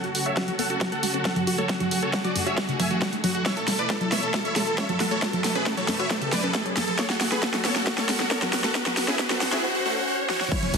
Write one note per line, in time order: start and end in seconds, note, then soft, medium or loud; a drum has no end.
0.00 3.42 C#3 medium
0.00 3.42 F#3 medium
0.00 6.95 A3 medium
0.00 3.42 F#4 medium
0.00 0.11 F#4 medium
0.00 1.68 A4 medium
0.00 closed hi-hat soft
0.00 riser medium
0.15 0.22 F#4 medium
0.15 open hi-hat loud
0.26 0.33 C#5 medium
0.26 0.33 E5 medium
0.37 0.43 C#4 medium
0.37 0.44 F#4 medium
0.37 kick loud
0.37 snare medium
0.37 closed hi-hat medium
0.48 0.52 F#3 medium
0.48 0.55 F#4 medium
0.48 closed hi-hat soft
0.59 0.62 B3 medium
0.59 0.66 A4 medium
0.59 0.66 F#5 loud
0.59 open hi-hat loud
0.70 0.77 F#4 medium
0.70 closed hi-hat soft
0.81 0.88 F#3 medium
0.81 0.88 F#4 medium
0.81 kick loud
0.81 snare medium
0.81 closed hi-hat medium
0.92 0.95 A3 medium
0.92 0.99 A4 medium
0.92 0.99 F#5 medium
0.92 closed hi-hat soft
1.03 1.06 G#3 medium
1.03 1.10 F#4 medium
1.03 open hi-hat loud
1.14 1.21 C#4 medium
1.14 1.21 F#4 medium
1.14 closed hi-hat soft
1.25 1.32 C#4 medium
1.25 1.32 A4 medium
1.25 1.32 F#5 medium
1.25 kick loud
1.25 snare medium
1.25 closed hi-hat medium
1.36 1.41 F#3 medium
1.36 1.43 F#4 medium
1.36 closed hi-hat soft
1.36 high conga medium
1.47 1.55 F#4 medium
1.47 1.52 F#4 loud
1.47 open hi-hat loud
1.58 1.61 A3 medium
1.58 1.66 A4 medium
1.58 1.66 C#5 loud
1.58 closed hi-hat soft
1.69 1.77 F#4 medium
1.69 3.44 G#4 medium
1.69 kick loud
1.69 snare medium
1.69 closed hi-hat medium
1.80 1.88 F#4 medium
1.80 closed hi-hat soft
1.80 high conga medium
1.91 1.99 F#4 medium
1.91 open hi-hat loud
2.02 2.09 C#4 medium
2.02 2.10 A4 medium
2.02 2.10 C#5 medium
2.13 2.21 F#4 medium
2.13 kick loud
2.13 snare medium
2.13 closed hi-hat medium
2.24 2.27 F#3 loud
2.24 2.32 F#4 medium
2.24 2.32 D5 medium
2.24 closed hi-hat soft
2.35 2.42 F#2 medium
2.35 2.43 F#4 medium
2.35 open hi-hat medium
2.46 2.49 F#4 loud
2.46 2.54 C#5 medium
2.46 2.54 E5 medium
2.46 closed hi-hat soft
2.58 2.60 F#3 medium
2.58 2.65 F#4 medium
2.58 kick loud
2.58 snare medium
2.58 closed hi-hat medium
2.69 2.73 C#3 loud
2.69 2.76 F#4 medium
2.69 closed hi-hat soft
2.80 2.82 B3 medium
2.80 2.87 E5 medium
2.80 2.87 G#5 medium
2.80 kick medium
2.80 open hi-hat loud
2.80 high conga medium
2.91 2.93 E3 medium
2.91 2.98 F#4 medium
2.91 closed hi-hat soft
3.02 3.06 F#3 medium
3.02 3.09 F#4 medium
3.02 kick loud
3.02 snare medium
3.02 closed hi-hat medium
3.13 3.17 G#3 medium
3.13 closed hi-hat soft
3.24 3.30 F#3 loud
3.24 3.31 F#4 medium
3.24 open hi-hat loud
3.24 high conga medium
3.35 3.42 F#4 medium
3.35 closed hi-hat soft
3.46 6.95 B2 medium
3.46 6.95 E3 medium
3.46 3.52 F#3 medium
3.46 6.95 E4 medium
3.46 5.20 A4 medium
3.46 3.53 C#5 medium
3.46 3.53 E5 loud
3.46 kick loud
3.46 snare medium
3.46 closed hi-hat medium
3.57 3.64 A4 medium
3.57 closed hi-hat soft
3.68 3.75 A4 medium
3.68 snare medium
3.68 open hi-hat loud
3.79 3.86 B4 medium
3.79 3.86 D5 medium
3.79 closed hi-hat soft
3.90 3.96 C#4 medium
3.90 3.97 A4 medium
3.90 kick loud
3.90 snare medium
3.90 closed hi-hat medium
4.01 4.05 F#3 medium
4.01 4.08 A4 medium
4.01 closed hi-hat soft
4.12 4.15 B3 medium
4.12 4.19 C#5 medium
4.12 4.19 E5 medium
4.12 snare medium
4.12 open hi-hat medium
4.23 4.30 A4 medium
4.23 closed hi-hat soft
4.34 4.41 F#3 medium
4.34 4.41 A4 medium
4.34 kick loud
4.34 snare medium
4.34 closed hi-hat medium
4.45 4.48 A3 medium
4.45 4.52 C#5 medium
4.45 4.52 E5 medium
4.45 closed hi-hat soft
4.56 4.59 G#3 medium
4.56 4.63 A4 medium
4.56 snare medium
4.56 open hi-hat loud
4.67 4.74 A4 medium
4.67 closed hi-hat soft
4.78 4.85 C#4 medium
4.78 4.85 C#5 medium
4.78 4.85 E5 medium
4.78 kick loud
4.78 snare medium
4.78 closed hi-hat medium
4.89 4.94 F#3 medium
4.89 4.96 A4 medium
4.89 closed hi-hat soft
4.89 high conga medium
5.00 5.05 F#4 loud
5.00 5.08 A4 medium
5.00 snare medium
5.00 open hi-hat medium
5.11 5.14 A3 medium
5.11 5.19 A4 medium
5.11 5.18 C#5 medium
5.11 closed hi-hat soft
5.22 5.30 A4 medium
5.22 6.97 B4 medium
5.22 kick loud
5.22 snare medium
5.22 closed hi-hat medium
5.33 5.41 A4 medium
5.33 closed hi-hat soft
5.33 high conga medium
5.44 5.52 A4 medium
5.44 snare medium
5.44 open hi-hat loud
5.55 5.62 C#4 medium
5.55 5.63 G#4 medium
5.55 5.63 B4 medium
5.55 closed hi-hat soft
5.66 5.73 C#4 medium
5.66 5.74 A4 medium
5.66 kick loud
5.66 snare medium
5.66 closed hi-hat medium
5.77 5.80 F#3 loud
5.77 5.85 A4 medium
5.77 5.85 C#5 medium
5.77 closed hi-hat soft
5.88 5.95 F#2 medium
5.88 5.96 A4 medium
5.88 snare medium
5.88 open hi-hat medium
5.99 6.02 F#4 loud
5.99 6.07 C#5 medium
5.99 6.07 E5 medium
5.99 closed hi-hat soft
6.10 6.13 F#3 medium
6.10 6.18 A4 medium
6.10 kick loud
6.10 snare medium
6.10 closed hi-hat medium
6.22 6.26 C#3 loud
6.22 6.29 A4 medium
6.22 closed hi-hat soft
6.32 6.35 C#4 medium
6.32 6.40 B4 medium
6.32 6.40 D5 loud
6.32 kick medium
6.32 snare medium
6.32 open hi-hat loud
6.32 high conga medium
6.44 6.50 C#4 medium
6.44 6.51 A4 medium
6.55 6.59 F#4 medium
6.55 6.62 A4 medium
6.55 kick loud
6.55 snare medium
6.55 closed hi-hat medium
6.66 6.70 F#3 loud
6.66 closed hi-hat soft
6.77 6.83 F#2 medium
6.77 6.84 A4 medium
6.77 snare medium
6.77 open hi-hat medium
6.77 high conga medium
6.88 6.95 A4 medium
6.88 closed hi-hat soft
6.99 9.61 C#3 medium
6.99 7.05 F#3 medium
6.99 9.61 F#3 medium
6.99 9.61 A3 medium
6.99 9.61 F#4 medium
6.99 9.61 A4 medium
6.99 7.06 A4 medium
6.99 7.06 C#5 loud
6.99 kick loud
6.99 snare medium
6.99 closed hi-hat medium
7.10 7.17 F#4 medium
7.10 snare medium
7.10 closed hi-hat soft
7.21 7.28 F#4 medium
7.21 snare loud
7.21 open hi-hat loud
7.32 7.39 G#4 medium
7.32 7.39 B4 medium
7.32 snare medium
7.43 7.49 C#4 medium
7.43 7.50 F#4 medium
7.43 kick loud
7.43 snare medium
7.43 closed hi-hat medium
7.54 7.58 F#3 medium
7.54 7.61 F#4 medium
7.54 snare medium
7.54 closed hi-hat soft
7.65 7.68 B3 medium
7.65 7.72 A4 medium
7.65 7.72 C#5 loud
7.65 snare medium
7.65 open hi-hat medium
7.76 7.83 F#4 medium
7.76 snare medium
7.87 7.93 F#3 medium
7.87 7.94 F#4 medium
7.87 kick loud
7.87 snare medium
7.87 closed hi-hat medium
7.98 8.01 A3 medium
7.98 8.05 A4 medium
7.98 8.05 C#5 medium
7.98 snare medium
7.98 closed hi-hat soft
8.09 8.12 G#3 medium
8.09 8.16 F#4 medium
8.09 snare loud
8.09 open hi-hat loud
8.20 8.27 F#4 medium
8.20 snare medium
8.31 8.38 C#4 medium
8.31 8.38 A4 medium
8.31 8.38 C#5 medium
8.31 kick loud
8.31 snare loud
8.31 closed hi-hat medium
8.42 8.46 F#3 medium
8.42 8.50 F#4 medium
8.42 snare medium
8.42 closed hi-hat soft
8.42 high conga medium
8.53 8.57 F#4 loud
8.53 8.60 F#4 medium
8.53 snare loud
8.53 open hi-hat medium
8.64 8.67 A3 medium
8.64 8.71 F#4 medium
8.64 8.71 A4 loud
8.64 snare medium
8.64 closed hi-hat soft
8.75 8.83 F#4 medium
8.75 kick loud
8.75 snare loud
8.75 closed hi-hat medium
8.86 8.94 F#4 medium
8.86 snare medium
8.86 closed hi-hat soft
8.86 high conga medium
8.97 9.05 F#4 medium
8.97 snare loud
8.97 open hi-hat loud
9.08 9.15 C#4 medium
9.08 9.16 E4 medium
9.08 9.16 G#4 medium
9.08 snare medium
9.19 9.26 C#4 medium
9.19 9.27 F#4 medium
9.19 kick loud
9.19 snare loud
9.19 closed hi-hat medium
9.30 9.33 F#3 loud
9.30 9.38 F#4 medium
9.30 9.38 A4 medium
9.30 snare loud
9.30 closed hi-hat soft
9.41 9.48 F#2 medium
9.41 9.49 F#4 medium
9.41 snare loud
9.41 open hi-hat medium
9.52 9.60 E4 medium
9.52 9.55 F#4 loud
9.52 9.60 G#4 medium
9.52 snare medium
9.52 closed hi-hat soft
9.63 9.71 F#4 medium
9.63 swell medium
9.75 9.82 F#4 medium
9.86 9.93 A3 medium
9.86 9.93 F#4 medium
9.97 10.04 F#4 medium
10.08 10.15 F#4 medium
10.30 10.37 F#4 medium
10.30 snare medium
10.41 10.48 F#4 medium
10.41 snare medium
10.52 10.78 C#3 medium
10.52 10.78 E3 medium
10.52 10.58 F#3 medium
10.52 10.78 G#3 medium
10.52 10.59 E4 medium
10.52 10.78 E4 medium
10.52 10.78 G#4 medium
10.52 10.59 C#5 loud
10.52 kick loud
10.52 closed hi-hat medium
10.52 crash loud
10.52 impact medium
10.52 shaker soft
10.63 10.70 C#4 medium
10.63 closed hi-hat soft
10.63 high conga medium
10.74 10.78 C#2 medium
10.74 10.78 C#4 medium
10.74 open hi-hat loud
10.74 shaker medium